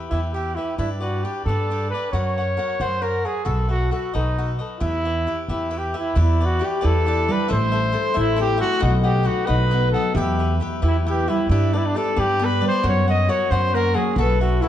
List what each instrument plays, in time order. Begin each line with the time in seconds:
Already playing: cavaquinho E4 G4 B4
0.09 upright bass E2, trumpet E4, cavaquinho E4 G4 B4 E5
0.33 cavaquinho E4 G4 B4 E5, trumpet G4
0.56 trumpet E4, cavaquinho G4 B4 E5
0.78 upright bass G2, cavaquinho D4 G4 B4 D5, trumpet E4
1.00 trumpet F#4, cavaquinho G4 B4 D5
1.24 cavaquinho D4 G4 B4 D5, trumpet G4
1.45 upright bass G2, cavaquinho D4 G4 B4 D5, trumpet A4
1.70 cavaquinho D4 G4 B4 D5
1.91 trumpet B4, cavaquinho D5
1.95 cavaquinho G4 B4
2.12 upright bass F#2, cavaquinho F#4 A#4 C#5 F#5, trumpet C#5
2.38 cavaquinho A#4 C#5 F#5
2.57 cavaquinho F#4 A#4 C#5 F#5
2.80 upright bass F#2, cavaquinho F#4 A#4 C#5 F#5, trumpet C5
3.02 cavaquinho F#4 A#4 C#5 F#5, trumpet A#4
3.25 trumpet G#4, cavaquinho A#4 C#5 F#5
3.45 upright bass B1, cavaquinho F#4 A4 B4 E5, trumpet A4
3.68 trumpet F#4, cavaquinho A4 B4 E5
3.91 cavaquinho F#4 A4 B4 E5, trumpet F#4
4.14 upright bass B1, trumpet D#4, cavaquinho F#4 A4 B4 D#5
4.38 cavaquinho F#4 A4 B4 D#5
4.59 cavaquinho A4 B4 D#5
4.80 upright bass E2, cavaquinho E4 G4 B4 E5, trumpet E4
5.05 cavaquinho G4 B4 E5
5.27 cavaquinho E4 G4 B4 E5
5.48 upright bass E2, cavaquinho E4 G4 B4 E5, trumpet E4
5.71 cavaquinho E4 G4 B4 E5
5.78 trumpet G4
5.94 cavaquinho G4 B4 E5
5.98 trumpet E4
6.15 upright bass E2, cavaquinho E4 G4 B4 D5, harp E5
6.21 trumpet E4
6.40 cavaquinho G4 B4 D5
6.45 trumpet F#4
6.59 cavaquinho E4 G4 B4 D5, harp G4
6.65 trumpet G4
6.81 upright bass E2, cavaquinho E4 G4 B4 D5, harp E4
6.85 trumpet A4
7.06 harp D4, cavaquinho E4 G4 B4 D5
7.28 harp G3, cavaquinho G4 B4 D5, trumpet B4
7.48 upright bass A1, cavaquinho E4 A4 C5 E5, trumpet C5, harp E5
7.72 cavaquinho A4 C5 E5
7.92 cavaquinho E4 A4 C5 E5, harp A4
8.14 upright bass A1, cavaquinho E4 A4 C5 E5, harp E4
8.18 trumpet E4
8.36 harp C4, cavaquinho E4 A4 C5 E5
8.40 trumpet G4
8.58 trumpet F#4, cavaquinho A4 C5 E5
8.62 harp A3
8.79 upright bass B1, cavaquinho D#4 B4 D#5 F#5, harp D#5
8.84 trumpet F#4
9.04 trumpet G4, cavaquinho B4 D#5 F#5
9.23 cavaquinho D#4 B4 D#5 F#5, trumpet F#4
9.28 harp F#4
9.46 upright bass B1, cavaquinho D#4 B4 D#5 F#5, harp D#4, trumpet B4
9.71 harp B3, cavaquinho D#4 B4 D#5 F#5
9.91 harp F#3, trumpet A4, cavaquinho D#5 F#5
9.96 cavaquinho B4
10.14 upright bass E2, cavaquinho E4 G4 B4 E5, trumpet G4, harp E5
10.39 cavaquinho G4 B4 E5
10.60 cavaquinho E4 G4 B4 E5, harp G4
10.82 upright bass E2, harp E4, cavaquinho E4 G4 B4 E5
10.87 trumpet E4
11.06 harp B3, cavaquinho E4 G4 B4 E5
11.10 trumpet G4
11.28 harp G3, trumpet E4, cavaquinho G4 B4 E5
11.50 upright bass G2, cavaquinho D4 G4 B4 D5, trumpet E4, harp D5
11.73 trumpet D4, cavaquinho G4 B4 D5
11.78 trumpet E4
11.86 trumpet D4
11.95 cavaquinho D4 G4 B4 D5, harp G4, trumpet A4
12.15 upright bass G2, harp D4, cavaquinho D4 G4 B4 D5
12.20 trumpet G4
12.39 harp B3, cavaquinho D4 G4 B4 D5
12.45 trumpet B4
12.61 harp G3, cavaquinho G4 B4 D5
12.68 trumpet C5
12.83 upright bass F#2, cavaquinho F#4 A#4 C#5 F#5, harp C#5
12.89 trumpet C#5
13.08 cavaquinho A#4 C#5 F#5, trumpet D#5
13.28 harp F#4, cavaquinho F#4 A#4 C#5 F#5, trumpet C#5
13.50 upright bass F#2, harp C#4, cavaquinho F#4 A#4 C#5 F#5, trumpet C5
13.72 harp A#3, cavaquinho F#4, trumpet A#4
13.76 cavaquinho A#4 C#5 F#5
13.94 harp F#3, trumpet G#4, cavaquinho A#4 C#5 F#5
14.15 upright bass B1, cavaquinho F#4 A4 B4 E5, trumpet A4, harp B4
14.41 trumpet F#4, cavaquinho A4 B4 E5
14.61 harp E4, trumpet E4, cavaquinho F#4 A4 B4 E5